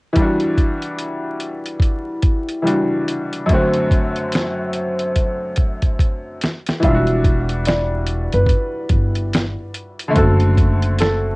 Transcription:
0.13 2.60 E3 medium
0.13 2.62 G3 medium
0.13 kick medium
0.13 closed hi-hat medium
0.18 2.63 D4 medium
0.18 2.65 F#4 medium
0.40 closed hi-hat soft
0.58 kick medium
0.58 closed hi-hat medium
0.82 closed hi-hat soft
0.99 closed hi-hat medium
1.40 closed hi-hat soft
1.66 closed hi-hat soft
1.80 kick medium
1.80 closed hi-hat medium
2.22 kick medium
2.22 closed hi-hat medium
2.49 closed hi-hat soft
2.62 3.47 E3 medium
2.62 3.48 G3 soft
2.62 3.49 D4 soft
2.66 3.49 F#4 medium
2.66 closed hi-hat medium
3.08 closed hi-hat medium
3.33 closed hi-hat soft
3.46 6.35 F#2 medium
3.46 6.36 D3 medium
3.46 kick medium
3.46 closed hi-hat medium
3.50 6.37 A3 medium
3.50 6.39 C4 medium
3.54 6.39 F#4 medium
3.73 closed hi-hat soft
3.91 kick medium
3.91 closed hi-hat medium
4.16 closed hi-hat soft
4.32 snare loud
4.32 closed hi-hat medium
4.73 closed hi-hat medium
4.99 closed hi-hat soft
5.16 kick medium
5.16 closed hi-hat medium
5.56 kick medium
5.56 closed hi-hat medium
5.82 kick medium
5.82 closed hi-hat soft
5.99 kick medium
5.99 closed hi-hat medium
6.41 snare medium
6.41 closed hi-hat medium
6.66 snare medium
6.66 closed hi-hat soft
6.80 8.29 E1 medium
6.80 10.10 E3 medium
6.80 10.12 G3 medium
6.80 kick loud
6.80 closed hi-hat medium
6.84 10.13 D4 medium
6.84 6.93 F4 medium
6.84 7.63 E5 medium
6.94 10.15 F#4 medium
7.07 closed hi-hat soft
7.24 kick medium
7.24 closed hi-hat medium
7.49 closed hi-hat soft
7.65 8.29 D5 medium
7.65 snare loud
7.65 closed hi-hat medium
8.07 closed hi-hat medium
8.32 8.49 F#1 medium
8.32 9.54 B4 medium
8.32 closed hi-hat soft
8.46 kick medium
8.46 closed hi-hat medium
8.89 9.54 G1 medium
8.89 kick medium
8.89 closed hi-hat medium
9.15 closed hi-hat soft
9.33 snare loud
9.33 closed hi-hat medium
9.74 closed hi-hat medium
9.99 closed hi-hat soft
10.08 11.36 D3 medium
10.08 11.36 A3 medium
10.14 11.36 F#1 loud
10.14 11.36 C4 medium
10.14 11.36 F#4 medium
10.14 10.96 A4 medium
10.14 kick medium
10.14 closed hi-hat medium
10.40 closed hi-hat soft
10.57 kick medium
10.57 closed hi-hat medium
10.82 closed hi-hat soft
10.99 11.36 A4 medium
10.99 snare loud
10.99 closed hi-hat medium

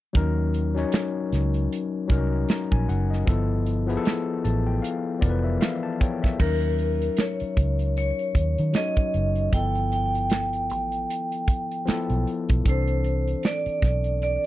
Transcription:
0.13 0.83 D#2 medium
0.13 0.50 F#3 medium
0.13 0.51 C#4 medium
0.13 0.52 D#4 medium
0.13 0.52 A#4 medium
0.13 kick loud
0.13 closed hi-hat medium
0.54 closed hi-hat medium
0.75 1.58 F#3 medium
0.75 1.59 C#4 medium
0.75 1.60 D#4 medium
0.75 closed hi-hat soft
0.79 1.60 C#5 medium
0.92 snare loud
0.92 closed hi-hat medium
1.33 1.66 C#2 medium
1.33 snare soft
1.33 closed hi-hat medium
1.54 closed hi-hat soft
1.73 closed hi-hat medium
2.08 2.44 C2 medium
2.08 2.82 F#3 medium
2.08 2.82 C#4 medium
2.08 2.83 D#4 medium
2.08 2.84 A#4 medium
2.08 kick medium
2.08 closed hi-hat medium
2.49 2.71 A#5 medium
2.49 snare loud
2.49 closed hi-hat medium
2.72 2.86 A#1 medium
2.72 2.87 G#5 medium
2.72 kick medium
2.89 3.23 F#1 medium
2.89 3.10 F#5 medium
2.89 closed hi-hat medium
3.11 3.48 D#5 medium
3.11 snare soft
3.26 3.96 G1 medium
3.26 3.63 F3 medium
3.26 3.63 B3 medium
3.26 3.64 E4 medium
3.26 3.65 A4 medium
3.26 kick loud
3.26 closed hi-hat medium
3.66 closed hi-hat medium
3.87 4.71 F3 medium
3.87 4.71 B3 medium
3.87 4.72 E4 medium
3.87 closed hi-hat soft
3.91 3.93 G#4 medium
3.97 4.76 A4 medium
4.05 snare loud
4.05 closed hi-hat medium
4.44 4.79 A1 medium
4.44 4.66 A5 medium
4.44 closed hi-hat medium
4.67 4.82 G5 medium
4.82 5.19 F5 medium
4.82 closed hi-hat medium
5.19 5.57 F1 medium
5.19 5.95 E3 medium
5.19 5.94 F3 medium
5.19 5.94 B3 medium
5.19 5.43 D5 medium
5.19 kick medium
5.23 5.31 A#4 medium
5.23 closed hi-hat medium
5.30 5.99 B4 medium
5.44 5.60 E5 medium
5.61 5.83 E5 medium
5.61 5.97 F5 medium
5.61 snare loud
5.61 closed hi-hat medium
5.83 5.99 A5 medium
6.00 6.37 C#5 medium
6.00 6.22 G5 medium
6.00 kick medium
6.00 closed hi-hat medium
6.23 6.60 E5 medium
6.23 kick medium
6.23 snare soft
6.38 7.08 D#2 medium
6.38 7.38 F#3 medium
6.38 7.38 C#4 medium
6.38 7.39 D#4 medium
6.38 7.21 A#4 medium
6.38 7.39 A#4 medium
6.38 kick loud
6.38 crash medium
6.62 closed hi-hat soft
6.79 closed hi-hat medium
7.02 closed hi-hat medium
7.17 7.96 C#5 medium
7.17 snare loud
7.17 closed hi-hat medium
7.40 muted fingered electric bass stroke soft
7.40 closed hi-hat soft
7.57 8.11 C#2 medium
7.57 kick medium
7.57 closed hi-hat medium
7.79 closed hi-hat soft
7.97 8.71 C#5 medium
7.97 closed hi-hat medium
8.19 closed hi-hat soft
8.35 8.55 D#2 medium
8.35 kick medium
8.35 closed hi-hat medium
8.58 8.73 D#3 medium
8.58 closed hi-hat soft
8.73 9.23 F#3 medium
8.73 9.24 C#4 medium
8.73 9.24 D#4 medium
8.73 9.55 D#5 medium
8.73 snare loud
8.73 closed hi-hat medium
8.77 9.25 C#5 medium
8.96 kick medium
8.96 closed hi-hat soft
9.14 9.48 F#1 medium
9.14 closed hi-hat medium
9.36 closed hi-hat soft
9.52 10.71 G1 medium
9.52 10.50 F3 medium
9.52 10.51 B3 medium
9.52 10.52 E4 medium
9.52 10.52 A4 medium
9.52 9.89 G5 medium
9.52 kick medium
9.52 closed hi-hat medium
9.75 closed hi-hat soft
9.92 12.23 G5 medium
9.92 closed hi-hat medium
10.15 closed hi-hat medium
10.30 snare medium
10.30 closed hi-hat medium
10.53 closed hi-hat soft
10.70 11.04 A1 medium
10.70 closed hi-hat medium
10.92 closed hi-hat soft
11.10 closed hi-hat medium
11.32 closed hi-hat soft
11.48 kick medium
11.48 closed hi-hat medium
11.72 closed hi-hat soft
11.85 12.35 F3 medium
11.85 12.36 B3 medium
11.85 12.37 E4 medium
11.85 12.37 A4 medium
11.85 muted fingered electric bass stroke soft
11.85 snare loud
11.85 closed hi-hat medium
12.10 12.24 B1 medium
12.10 closed hi-hat soft
12.27 closed hi-hat medium
12.49 12.64 B1 medium
12.49 kick medium
12.49 closed hi-hat soft
12.64 13.33 C2 medium
12.64 13.63 E3 medium
12.64 13.64 C4 medium
12.64 13.64 D4 medium
12.64 13.65 A4 medium
12.64 kick loud
12.64 closed hi-hat medium
12.69 13.48 C5 medium
12.87 closed hi-hat soft
13.04 closed hi-hat medium
13.28 closed hi-hat medium
13.43 14.18 D5 medium
13.43 snare loud
13.43 closed hi-hat medium
13.66 muted fingered electric bass stroke soft
13.66 closed hi-hat soft
13.82 14.36 B1 medium
13.82 kick medium
13.82 snare soft
13.82 closed hi-hat medium
14.04 closed hi-hat soft
14.22 14.46 D5 medium
14.22 closed hi-hat medium

